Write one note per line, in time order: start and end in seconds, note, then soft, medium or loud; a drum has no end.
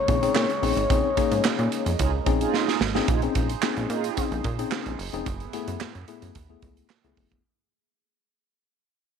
0.00 3.04 C#3 medium
0.00 3.04 G#3 medium
0.00 3.04 A#3 medium
0.00 3.04 D#4 medium
0.00 2.50 C#5 loud
0.08 0.29 A#1 medium
0.08 0.18 C4 medium
0.08 0.18 C#4 medium
0.08 0.18 D#4 medium
0.08 0.18 G#4 medium
0.08 kick loud
0.08 closed hi-hat medium
0.22 0.50 C4 loud
0.22 0.50 C#4 medium
0.22 0.50 D#4 medium
0.22 0.50 G#4 loud
0.22 closed hi-hat medium
0.35 0.46 A#2 loud
0.35 snare loud
0.35 clap medium
0.50 closed hi-hat soft
0.62 0.73 A#1 loud
0.62 0.81 C4 loud
0.62 0.81 C#4 medium
0.62 0.82 D#4 medium
0.62 0.82 G#4 loud
0.62 open hi-hat medium
0.77 0.87 G#1 medium
0.77 closed hi-hat medium
0.90 1.01 A#1 loud
0.90 1.09 C4 medium
0.90 1.09 C#4 medium
0.90 1.09 D#4 medium
0.90 1.09 G#4 loud
0.90 kick loud
0.90 closed hi-hat medium
1.17 1.91 A#3 loud
1.17 1.91 C#4 medium
1.17 1.91 D#4 medium
1.17 1.91 G#4 loud
1.17 kick medium
1.17 closed hi-hat medium
1.31 1.41 G#2 medium
1.31 closed hi-hat medium
1.44 1.50 A#2 soft
1.44 snare loud
1.44 clap loud
1.59 1.69 A#2 loud
1.59 closed hi-hat soft
1.72 closed hi-hat medium
1.86 1.96 F2 medium
1.86 closed hi-hat medium
1.99 2.20 C#2 loud
1.99 2.11 D#4 medium
1.99 2.11 F4 medium
1.99 2.11 G#4 loud
1.99 kick loud
1.99 closed hi-hat loud
2.26 2.47 A#1 medium
2.26 2.72 C4 medium
2.26 2.72 C#4 medium
2.26 2.73 D#4 medium
2.26 2.73 G#4 loud
2.26 kick loud
2.26 closed hi-hat medium
2.41 2.79 D#4 loud
2.41 2.79 F4 loud
2.41 2.79 G#4 loud
2.41 closed hi-hat medium
2.54 snare medium
2.68 snare medium
2.81 3.01 G#1 medium
2.81 snare loud
2.95 3.08 C4 loud
2.95 3.08 C#4 medium
2.95 3.08 D#4 medium
2.95 3.08 G#4 loud
2.95 snare medium
3.08 3.29 A#1 loud
3.08 5.24 C#3 medium
3.08 5.24 D#4 loud
3.08 3.21 D#4 medium
3.08 3.21 F4 medium
3.08 3.21 G#4 loud
3.08 7.41 G#4 medium
3.08 5.24 C5 medium
3.08 kick loud
3.08 closed hi-hat medium
3.22 3.50 C4 medium
3.22 3.50 C#4 medium
3.22 3.50 D#4 medium
3.22 3.50 G#4 medium
3.22 closed hi-hat soft
3.35 3.56 A#1 loud
3.35 kick medium
3.35 closed hi-hat medium
3.50 closed hi-hat medium
3.62 4.00 C4 medium
3.62 4.00 C#4 medium
3.62 4.00 D#4 medium
3.62 4.00 G#4 loud
3.62 snare loud
3.62 clap loud
3.77 3.87 A#1 loud
3.77 closed hi-hat soft
3.90 4.10 A#2 medium
3.90 4.25 D#4 loud
3.90 4.26 F4 loud
3.90 4.25 G#4 loud
3.90 closed hi-hat medium
4.04 closed hi-hat medium
4.17 4.45 C4 medium
4.17 4.45 C#4 medium
4.17 4.45 D#4 medium
4.17 4.45 G#4 medium
4.17 kick loud
4.17 closed hi-hat loud
4.31 4.41 A#1 loud
4.31 closed hi-hat soft
4.44 4.65 A#2 loud
4.44 kick loud
4.44 closed hi-hat medium
4.59 4.95 C4 medium
4.59 4.95 C#4 medium
4.59 4.95 D#4 medium
4.59 4.95 G#4 loud
4.59 closed hi-hat medium
4.71 snare loud
4.71 clap medium
4.86 4.96 A#1 medium
4.86 closed hi-hat soft
4.99 5.10 F#1 loud
4.99 open hi-hat medium
5.13 5.23 F1 loud
5.13 5.26 C4 medium
5.13 5.26 C#4 medium
5.13 5.26 D#4 medium
5.13 5.27 G#4 loud
5.13 closed hi-hat medium
5.26 5.47 F#1 loud
5.26 7.42 A2 medium
5.26 7.42 B3 medium
5.26 7.42 E4 medium
5.26 kick loud
5.26 closed hi-hat medium
5.40 closed hi-hat soft
5.53 5.91 A3 loud
5.53 5.91 B3 loud
5.53 5.91 E4 medium
5.53 5.91 G#4 loud
5.53 closed hi-hat medium
5.68 5.78 F#2 loud
5.68 closed hi-hat medium
5.80 snare loud
5.80 clap loud
5.95 6.05 F#2 loud
5.95 closed hi-hat soft
6.08 6.35 A3 medium
6.08 6.36 B3 medium
6.08 6.36 E4 medium
6.08 6.36 G#4 loud
6.08 closed hi-hat medium
6.22 6.32 F#2 loud
6.22 closed hi-hat medium
6.35 6.56 D#2 medium
6.35 kick loud
6.35 closed hi-hat loud
6.49 6.86 A3 medium
6.49 6.86 B3 medium
6.49 6.86 E4 medium
6.49 6.86 G#4 medium
6.62 6.83 C#2 medium
6.62 kick loud
6.62 closed hi-hat medium
6.77 closed hi-hat medium
6.89 snare loud
6.89 clap medium
7.04 7.14 C#2 medium
7.04 7.40 A3 medium
7.04 7.40 B3 medium
7.04 7.40 E4 medium
7.04 7.41 G#4 medium
7.04 closed hi-hat soft
7.17 7.28 F#1 loud
7.17 kick loud
7.17 open hi-hat medium
7.32 7.41 E1 medium
7.32 kick medium
7.32 closed hi-hat medium